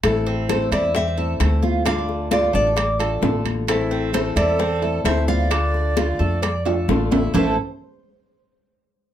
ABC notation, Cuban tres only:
X:1
M:4/4
L:1/8
Q:1/4=131
K:Am
V:1 name="Cuban tres"
z C A E C A2 F | D2 F A d A2 z | z C A E C A2 F | D2 F A d A2 E |
[A,EA] z6 z |]